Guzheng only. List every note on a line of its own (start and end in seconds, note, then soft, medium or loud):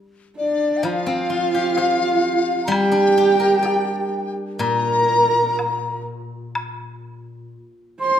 0.83 3.65 F3 medium
1.06 2.95 C4 medium
1.30 3.18 F4 soft
1.54 3.16 G4 soft
1.77 3.66 C5 soft
2.68 5.57 G3 medium
2.92 4.84 D4 soft
3.18 5.09 G4 soft
3.40 5.33 A#4 soft
3.62 5.57 D5 soft
4.59 7.52 A#2 medium